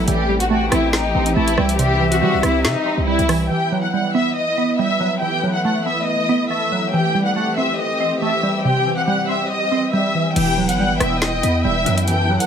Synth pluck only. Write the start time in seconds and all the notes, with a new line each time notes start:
0.08 E3
0.29 G3
0.50 A3
0.72 C4
1.15 C4
1.36 A3
1.58 G3
1.79 C3
2.01 E3
2.22 G3
2.43 C4
2.86 C4
3.08 G3
3.29 E3
3.50 E3
3.72 F#3
3.93 G3
4.15 B3
4.58 B3
4.79 G3
5.00 F#3
5.22 E3
5.43 F#3
5.65 A3
5.86 B3
6.29 B3
6.51 A3
6.72 F#3
6.93 E3
7.15 G3
7.36 A3
7.58 C4
8.00 C4
8.22 A3
8.43 G3
8.65 C3
8.86 E3
9.07 G3
9.29 C4
9.72 C4
9.93 G3
10.15 E3
10.36 E3
10.58 F#3
10.79 G3
11.00 B3
11.43 B3
11.65 G3
11.86 F#3
12.08 E3
12.29 F#3